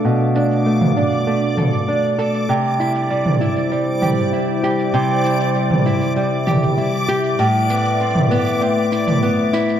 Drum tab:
SH |x-----x--x--x-----x--x--------x--x--x-----x--x--|x-----x--x--x-----x--x--x-----x--x--x-----x--x--|x-----x--x--x-----x--x--x-----x--x--x-----x--x--|x-----x--x--x-x-x-x--x--x-----x--x--x-----x--x--|
T2 |---------------o--------------o-----------------|---------------o--------------o-----------------|---------------o--------------o-o-o-------------|---------------o-----------------o--------------|